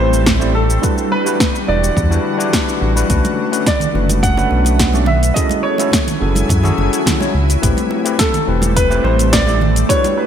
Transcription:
Already playing: G3 A3 C4 E4 G4 C5
0.00 A1 C5
0.13 shaker
0.26 kick, snare, shaker
0.39 A3 C4 E4 G4 D5, shaker
0.55 A4
0.70 shaker
0.82 D3 E3 G3 D4 E4 F#4 B4, kick, shaker
0.98 shaker
1.12 B4
1.25 G3 D4 E4 F#4 B4, shaker
1.40 kick, snare, shaker
1.56 shaker
1.67 E1 G3 D4 E4 F#4 B4 D5
1.84 shaker
1.97 E2, kick, shaker
2.10 G3 D4 E4 F#4 B4, shaker
2.38 G3 D4 E4 F#4 B4, shaker
2.53 kick, snare, shaker
2.69 shaker
2.82 A1
2.95 G3 D4 E4 F#4 B4, shaker
3.09 B1 A3 B3 C#4 D4 F#4 B4, kick, closed hi-hat, shaker
3.25 closed hi-hat, high bongo, high conga, shaker
3.51 A3 C#4 D4 F#4 B4, closed hi-hat, shaker
3.66 D5, kick, snare, closed hi-hat, high bongo, high conga, shaker
3.80 closed hi-hat, low conga, shaker
3.94 F#1 A3 C#4 D4 F#4 B4, high bongo
4.09 closed hi-hat, high conga, shaker
4.23 F#5, kick, closed hi-hat, shaker
4.37 A3 C#4 D4 F#4 B4, high bongo, shaker
4.51 B1, high conga
4.65 closed hi-hat, high bongo, shaker
4.79 kick, snare, closed hi-hat, shaker
4.93 A3 C#4 D4 F#4 D5, high conga, shaker
5.06 E5, high bongo, low conga
5.23 closed hi-hat, shaker
5.34 F#3 C#4 E4 F#4 G#4 A4 D#5 G#5, kick, closed hi-hat, high bongo, shaker
5.49 closed hi-hat, high conga, shaker
5.63 C#5
5.78 G#3 C#4 E4 F#4 A4, closed hi-hat, high bongo, shaker
5.92 kick, snare, closed hi-hat, high conga, shaker
6.07 closed hi-hat, high bongo, low conga, shaker
6.20 F#1 C#4 E4 F#4 G#4 A4
6.35 closed hi-hat, high conga, shaker
6.49 F#2, kick, closed hi-hat, high bongo, shaker
6.63 C#4 E4 F#4 G#4 A4, low conga, shaker
6.78 F#1, high bongo, high conga
6.93 closed hi-hat, shaker
7.06 kick, snare, closed hi-hat, low conga, shaker
7.20 G#3 C#4 E4 F#4 C#5, high bongo, high conga, shaker
7.34 C#2
7.49 closed hi-hat, high bongo, shaker
7.62 A1 G3 A3 C4 E4 G4 B4, kick, closed hi-hat, shaker
7.77 closed hi-hat, high conga, shaker
7.91 high bongo
8.05 A3 C4 E4 G4 B4, closed hi-hat, shaker
8.19 A4, kick, snare, closed hi-hat, high bongo, high conga, shaker
8.33 closed hi-hat, low conga, shaker
8.47 E1 A3 C4 E4 G4 B4
8.62 closed hi-hat, high bongo, high conga, shaker
8.76 B4, kick, closed hi-hat, shaker
8.90 A3 C4 E4 G4 B4, high bongo, shaker
9.04 A1 C5, high conga
9.19 closed hi-hat, shaker
9.33 D5, kick, snare, closed hi-hat, high bongo, shaker
9.46 A3 C4 E4 G4 D5, high conga, shaker
9.61 high bongo, low conga
9.76 closed hi-hat, shaker
9.89 E3 G3 D4 E4 F#4 B4 C#5, kick, closed hi-hat, shaker
10.04 closed hi-hat, high bongo, high conga, shaker
10.17 B4

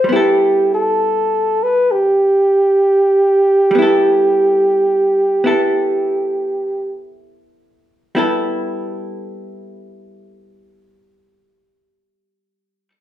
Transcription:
Already playing: C5
0.04 G3
0.09 B3 E4 G4
0.16 A4
0.74 A4
1.63 B4
1.91 G4
3.71 G3
3.75 B3 E4
3.82 A4
5.44 B3 E4 A4
8.15 G3 B3 E4 A4

